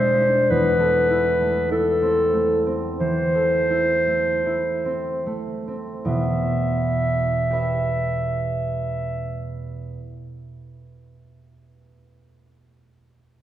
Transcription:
Already playing: B2 G#3 D4 E4 G#4 C5
0.20 D4
0.50 E2 B4
0.80 A4
1.10 E4
1.41 A3
1.71 E4 A4
2.02 C4
2.34 A3
2.66 C4
3.00 E3 C5
3.35 A4
3.70 E4
4.07 A3
4.46 E4
4.85 C4
5.26 A3
5.68 C4
6.04 E2 B2 E5
7.51 G4 B4 E5

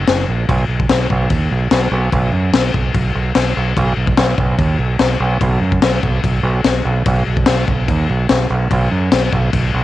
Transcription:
0.08 F#1, snare, crash
0.28 A#1
0.49 B1, kick, crash
0.68 B1
0.80 kick
0.89 B1, snare, crash
1.10 B1, kick
1.30 D#2, kick, crash
1.51 B1
1.71 B1, snare, crash
1.91 B1
2.12 B1, kick, crash
2.32 F#2
2.53 B1, snare, crash
2.74 B1, kick
2.94 B1, kick, crash
3.15 B1
3.35 B1, snare, crash
3.57 B1
3.77 B1, kick, crash
3.97 B1
4.07 kick
4.17 B1, snare, crash
4.38 B1, kick
4.58 D#2, kick, crash
4.79 B1
4.99 B1, snare, crash
5.20 B1
5.41 B1, kick, crash
5.61 F#2
5.72 kick
5.82 B1, snare, crash
6.03 B1, kick
6.24 B1, kick, crash
6.43 B1
6.64 B1, snare, crash
6.85 B1
7.06 B1, kick, crash
7.27 B1
7.37 kick
7.46 B1, snare, crash
7.68 B1, kick
7.88 D#2, kick, crash
8.10 B1
8.29 B1, snare, crash
8.50 B1
8.71 B1, kick, crash
8.91 F#2
9.12 B1, snare, crash
9.33 B1, kick
9.53 B1, kick, crash
9.74 B1

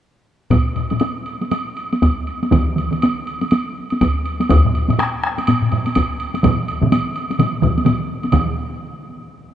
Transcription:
0.51 taiko, taiko low-mid, taiko high, high woodblock
0.76 taiko low-mid, high woodblock
0.90 taiko low-mid, taiko high, high woodblock
1.00 taiko high, high woodblock
1.26 high woodblock
1.42 taiko high, high woodblock
1.51 taiko high, high woodblock
1.77 high woodblock
1.93 taiko high, high woodblock
2.02 taiko, taiko high, high woodblock
2.27 high woodblock
2.43 taiko high, high woodblock
2.51 taiko, taiko mid, taiko high, high woodblock
2.76 taiko mid, high woodblock
2.91 taiko mid, taiko high, high woodblock
3.02 taiko high, high woodblock
3.27 high woodblock
3.41 taiko high, high woodblock
3.51 taiko high, high woodblock
3.90 taiko high, high woodblock
4.01 taiko, taiko high, high woodblock
4.26 high woodblock
4.40 taiko high, high woodblock
4.49 taiko, taiko high, high woodblock
4.65 taiko low-mid
4.75 high woodblock
4.88 taiko low-mid, taiko high, high woodblock
4.99 taiko rim, taiko high, high woodblock
5.24 taiko rim
5.38 taiko high, high woodblock
5.47 taiko low-mid, taiko high, high woodblock
5.62 taiko low-mid
5.72 taiko low-mid, high woodblock
5.86 taiko high, high woodblock
5.95 taiko, taiko high, high woodblock
6.20 high woodblock
6.34 taiko high, high woodblock
6.43 taiko, taiko low-mid, taiko mid, taiko high, high woodblock
6.68 high woodblock
6.82 taiko low-mid, taiko mid, taiko high
6.92 taiko high, high woodblock
7.16 high woodblock
7.31 taiko high, high woodblock
7.39 taiko low-mid, taiko mid, taiko high, high woodblock
7.62 taiko, taiko low-mid, taiko mid, high woodblock
7.78 taiko high, high woodblock
7.86 taiko low-mid, taiko mid, taiko high, high woodblock
8.23 taiko high, high woodblock
8.32 taiko, taiko low-mid, taiko mid, taiko high, high woodblock

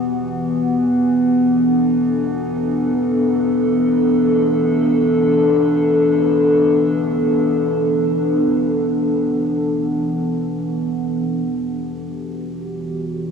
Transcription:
Already playing: E3 B3 F#4 G4
1.46 D4 A4
11.26 E3
11.48 B3 G4
11.96 F#4

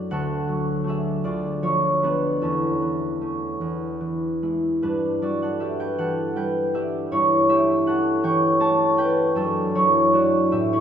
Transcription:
Already playing: F#2 F#3 A3 D4 E4 F#4 A4 D5
0.11 D2 A4 F#5
0.49 F#3
0.84 A3 D4
0.88 G#4 E5
1.24 D2 F4 D5
1.62 F3 F4 C#5
2.02 A3 B3 D4 B4
2.42 E2 C#4 A4
2.82 E3
3.21 A3 C#4
3.61 E2
4.00 E3
4.42 G#3 E4
4.82 G2 D4 B4
5.22 G3 F#4 D5
5.42 A4 F#5
5.60 D4 G4 E5
5.80 B4 G5
5.98 E3 A4 F#5
6.36 G3 B4 G5
6.74 D4 G4 E5
7.11 G2 E4 C#5
7.49 A3 G4 E5
7.86 C#4 A4 F#5
8.23 E3 C#5 G5
8.60 A3 C#5 A5
8.98 C#4 B4 G5
9.35 F#2 D4 A4
9.75 F#3 E4 C#5
10.13 A3 D4 F#4 D5
10.51 A2 G4 E5
10.73 E4 C#5

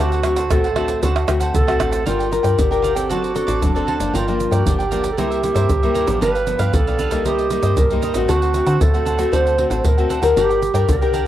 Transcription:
Already playing: A3 C4 F#4
0.00 D2 D3 D4 F#4 A4 C5 F#5
0.12 A4 C5 F#5, pandeiro, shaker
0.23 A3 C4 F#4, muted cavaquinho stroke, pandeiro, tamborim, shaker
0.36 A4 C5 F#5, pandeiro, shaker, surdo
0.50 A1 A2 A3 C4 F#4 A4, pandeiro, tamborim, shaker, surdo
0.64 A4 C5 F#5, pandeiro, shaker
0.75 A3 C4 D4 F#4 A4 C5 F#5, pandeiro, tamborim
0.88 A4 C5 F#5, pandeiro, shaker, surdo
1.02 D2 D3 D4 F#4 A4 C5 F#5, pandeiro, shaker, surdo
1.16 A4 C5 F#5, pandeiro, tamborim, shaker
1.27 D2 A3 C4 F#4, muted cavaquinho stroke, pandeiro, tamborim, shaker
1.40 A4 C5 F#5, pandeiro, shaker, surdo
1.54 C2 A2 A4, pandeiro, shaker, surdo
1.67 A3 C4 F#4 A4 C5 F#5, pandeiro, tamborim, shaker, surdo
1.79 A1 D4 A4 C5 F#5, pandeiro, tamborim, shaker, surdo
1.91 A4 C5 F#5, pandeiro, shaker
2.06 G1 G3 D4 F4 A#4 D5 G5, pandeiro, shaker, surdo
2.19 A#4 D5 G5, pandeiro, shaker
2.31 D4 F4 A#4, muted cavaquinho stroke, pandeiro, shaker
2.43 G2 A#4 D5 G5, pandeiro, shaker, surdo
2.58 G1 D3 G4, pandeiro, shaker, surdo
2.71 D4 F4 A#4 D5 G5, pandeiro, shaker
2.82 F4 A#4 D5 G5, pandeiro, shaker
2.95 C4 D4 A4 A#4 D5 G5, pandeiro, shaker, surdo
3.10 F#1 F#3 F#4 A4 C5 D5, pandeiro, shaker, surdo
3.22 A4 C5 D5, pandeiro, shaker
3.35 C4 D4 A4, muted cavaquinho stroke, pandeiro, shaker
3.47 A1 A4 C5 D5, pandeiro, shaker, surdo
3.62 F#1 F#3 D4, pandeiro, shaker, surdo
3.75 C4 D4 A4 C5 D5, pandeiro, shaker, surdo
3.87 F#4 A4 C5 D5, pandeiro
3.99 F#1 F3 A#3 D4 A4 C5 D5, pandeiro, shaker
4.13 G1 G2 F4 A#4 D5 G5, pandeiro, shaker, surdo
4.27 F3 A#3 D4 A#4 D5 G5, pandeiro, shaker
4.39 muted cavaquinho stroke, pandeiro, shaker
4.51 G2 A#4 D5 G5, pandeiro, shaker, surdo
4.59 F#4
4.66 G1 D3 F3 A#3 D4 G4, pandeiro, shaker, surdo
4.79 A#4 D5 G5, pandeiro, shaker
4.91 F3 A#3 D4 F4 A#4 D5 G5, pandeiro, shaker
5.03 A#4 D5 G5, pandeiro, shaker, surdo
5.12 A4
5.17 C2 C3 G3 A#3 E4 G4 A#4 C5 E5, pandeiro, shaker, surdo
5.31 A#4 C5 E5, pandeiro, shaker
5.43 G3 A#3 E4, muted cavaquinho stroke, pandeiro, shaker
5.54 G2 A#4 C5 E5, pandeiro, shaker, surdo
5.69 C2 G2, pandeiro, shaker, surdo
5.82 G3 A#3 E4 A#4 C5 E5, pandeiro, shaker, surdo
5.94 E4 A#4 C5 E5, pandeiro, shaker, surdo
6.07 A1 F3 B3 D4 A#4 C5 E5, pandeiro, shaker
6.21 G1 G2 D4 G4 B4 F5, pandeiro, shaker, surdo
6.35 G4 B4 F5, pandeiro, shaker
6.47 F3 B3 D4, muted cavaquinho stroke, pandeiro, shaker
6.59 G2 G4 B4 F5, pandeiro, shaker, surdo
6.74 B1 D3 A4, pandeiro, shaker, surdo
6.87 F3 B3 D4 G4 B4 F5, pandeiro, shaker
6.99 D4 G4 B4 F5, pandeiro, shaker
7.11 G3 A#3 D#4 G4 B4 F5, pandeiro, shaker, surdo
7.25 C2 C3 G4 A#4 C5 D#5, pandeiro, shaker, surdo
7.39 C5 D#5, pandeiro, shaker
7.50 G3 A#3 D#4, muted cavaquinho stroke, pandeiro, shaker
7.63 G2 C5 D#5, pandeiro, shaker, surdo
7.77 C2 G2 A#4, pandeiro, shaker, surdo
7.90 G3 A#3 D#4 C5 D#5, pandeiro, shaker, surdo
8.02 A#4 C5 D#5, pandeiro, shaker, surdo
8.14 A1 A3 C4 F#4 C5 D#5, pandeiro, shaker
8.28 D2 D3 D4 F#4 A4 C5 F#5, pandeiro, shaker, surdo
8.42 A4 C5 F#5, pandeiro, shaker
8.54 A3 C4 F#4, muted cavaquinho stroke, pandeiro, shaker
8.67 D3 A4 C5 F#5, pandeiro, shaker, surdo
8.81 D2 A2 A4, pandeiro, shaker, surdo
8.94 A3 C4 F#4 A4 C5 F#5, pandeiro, shaker
9.06 D4 A4 C5 F#5, pandeiro, shaker
9.18 A3 C4 F#4 A4 C5 F#5, pandeiro, shaker, surdo
9.32 D2 D3 D4 A4 C5 F#5, pandeiro, shaker, surdo
9.46 A4 C5 F#5, pandeiro, shaker
9.58 A3 C4 F#4, muted cavaquinho stroke, pandeiro
9.70 A1 A4 C5 F#5, pandeiro, shaker, surdo
9.78 C5
9.84 D2 A2 A#4, pandeiro, shaker, surdo
9.97 A3 C4 F#4 A4 C5 F#5, pandeiro, shaker, surdo
10.09 D4 A4 C5 F#5, pandeiro, shaker, surdo
10.22 D2 D4 G4 A4 A#4 C5 F#5, pandeiro, shaker
10.36 G1 G3 D4 G4 A#4 D5 G5, pandeiro, shaker, surdo
10.49 A#4 D5 G5, pandeiro, shaker
10.62 muted cavaquinho stroke, pandeiro, shaker
10.73 G2 D4 G4 A#4 D5 G5, pandeiro, shaker, surdo
10.88 C2 D3 A#4, pandeiro, shaker, surdo
11.01 D4 G4 A#4 D5 G5, pandeiro, shaker
11.13 D4 A#4 D5 G5, pandeiro, shaker

